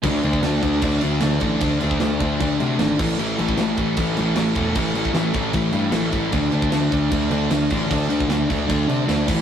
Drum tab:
CC |x-x-x-x-x-x-x-x-|x-x-x-x-x-x-x-x-|x-x-x-x-x-x-x-x-|x-x-x-x-x-x-x-x-|
SD |----o-------o---|----o-------o---|----o-------o---|----o-------o---|
BD |o--o--o-o-----o-|o--o--o-o-----o-|---o--o-o-----o-|o--o--o-o-----o-|

CC |x-x-x-x-x-x-x-x-|x-x-x-x-x-x-x-x-|
SD |----o-------o---|----o-------o---|
BD |o--o--o-o-----o-|o--o--o-o-----o-|